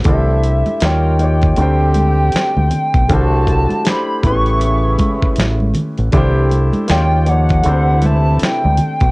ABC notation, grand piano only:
X:1
M:4/4
L:1/8
Q:"Swing 16ths" 1/4=79
K:Dmix
V:1 name="Grand piano"
[A,DEGc]2 [^A,^D^EG^c] [A,DEGc] [=A,=C=DG=c]4 | [A,DEGc]2 [A,DEGc] [A,B,^CEGB]4 z | [A,DEGc]2 [^A,^D^EG^c] [^E,A,DGc] [=A,=C=DG=c]4 |]